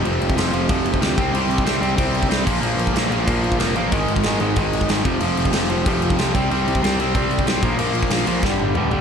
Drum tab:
CC |x-x-x-x-x-x-x-x-|x-x-x-x-x-x-x-x-|x-x-x-x-x-x-x-x-|x-x-x-x-x-x-x-x-|
SD |----o-------o---|----o-------o---|----o-------o---|----o-------o---|
T1 |----------------|----------------|----------------|----------------|
T2 |----------------|----------------|----------------|----------------|
FT |----------------|----------------|----------------|----------------|
BD |---o----o--o--o-|---o----o--o--o-|---o----o--o----|o--o----o--o--o-|

CC |x-x-x-x-x-x-x-x-|x-x-x-x-x-x-x-x-|x-x-x-x---------|
SD |----o-------o---|----o-------o---|----o---o-------|
T1 |----------------|----------------|----------o-----|
T2 |----------------|----------------|------------o---|
FT |----------------|----------------|--------------o-|
BD |---o----o--o--o-|---o----o--o--o-|---o----o-------|